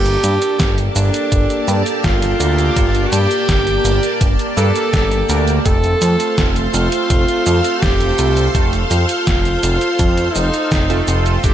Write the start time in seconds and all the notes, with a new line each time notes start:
Already playing: G1 A#3 D4 G4 A4 D5 A5
0.06 closed hi-hat, shaker
0.24 G2, closed hi-hat, shaker
0.42 closed hi-hat, shaker
0.60 G1, kick, snare, closed hi-hat, shaker
0.78 closed hi-hat, shaker
0.96 G1 D4, closed hi-hat, shaker
1.14 closed hi-hat, shaker
1.32 G1, kick, closed hi-hat, shaker
1.50 closed hi-hat, shaker
1.68 G2, closed hi-hat, shaker
1.86 closed hi-hat, shaker
2.04 G1 F4, kick, snare, closed hi-hat, shaker
2.22 closed hi-hat, shaker
2.40 D2 A#3 D4 G4 A4, closed hi-hat, shaker
2.59 closed hi-hat, shaker
2.76 G1 A#3 D4 G4 A4, kick, closed hi-hat, shaker
2.95 closed hi-hat, shaker
3.12 G2 G4, closed hi-hat, shaker
3.31 closed hi-hat, shaker
3.49 G1, kick, snare, closed hi-hat, shaker
3.67 closed hi-hat, shaker
3.85 G1, closed hi-hat, shaker
4.03 closed hi-hat, shaker
4.21 G1, kick, closed hi-hat, shaker
4.39 closed hi-hat, shaker
4.57 G2 A#3 D4 G4 A4, closed hi-hat, shaker
4.76 closed hi-hat, shaker
4.93 G1, kick, snare, closed hi-hat, shaker
5.12 closed hi-hat, shaker
5.29 D2 A#3 D4 G4 A#4, closed hi-hat, shaker
5.48 closed hi-hat, shaker
5.65 F1 A3 C4 F4 A4 C5 F5 C6, kick, closed hi-hat, shaker
5.84 closed hi-hat, shaker
6.02 F2, closed hi-hat, shaker
6.20 closed hi-hat, shaker
6.38 F1, kick, snare, closed hi-hat, shaker
6.56 closed hi-hat, shaker
6.74 F1 F4, closed hi-hat, shaker
6.92 closed hi-hat, shaker
7.10 F1, kick, closed hi-hat, shaker
7.28 closed hi-hat, shaker
7.46 F2, closed hi-hat, shaker
7.64 closed hi-hat, shaker
7.82 F1 G4, kick, snare, closed hi-hat, shaker
8.01 closed hi-hat, shaker
8.19 C2 A3 C4 F4 A4, closed hi-hat, shaker
8.37 closed hi-hat, shaker
8.55 F1 A3 C4 F4 A4, kick, closed hi-hat, shaker
8.73 closed hi-hat, shaker
8.91 F2 F4, closed hi-hat, shaker
9.09 closed hi-hat, shaker
9.27 F1, kick, snare, closed hi-hat, shaker
9.45 closed hi-hat, shaker
9.63 F1, closed hi-hat, shaker
9.81 closed hi-hat, shaker
9.99 F2, kick, closed hi-hat, shaker
10.17 closed hi-hat, shaker
10.35 F1 D#4, closed hi-hat, shaker
10.54 closed hi-hat, shaker
10.71 F1, kick, snare, closed hi-hat, shaker
10.90 A3 C4 F4 A4, closed hi-hat, shaker
11.08 F1, closed hi-hat, shaker
11.26 closed hi-hat, shaker
11.44 G1 A#3 D4 G4 A4 A5 D6, kick, closed hi-hat, shaker